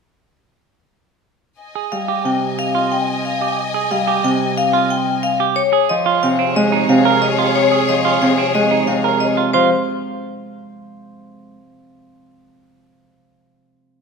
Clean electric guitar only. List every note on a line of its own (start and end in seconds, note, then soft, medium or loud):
1.75 1.97 G#4 medium
2.08 2.30 G4 medium
2.75 2.96 F4 medium
3.41 3.63 G4 medium
3.74 3.96 G#4 medium
4.08 4.29 G4 medium
4.73 4.95 F4 medium
5.40 5.62 G4 medium
5.73 5.95 G#4 medium
6.06 6.28 F4 medium
6.39 6.61 C4 medium
6.72 6.94 D#4 medium
7.05 7.27 A#4 medium
7.39 7.60 F4 medium
7.72 7.93 G#4 medium
8.05 8.27 F4 medium
8.38 8.60 C4 medium
8.71 8.93 D#4 medium
9.04 9.26 A#4 medium
9.37 9.53 F4 medium
9.54 9.70 F4 medium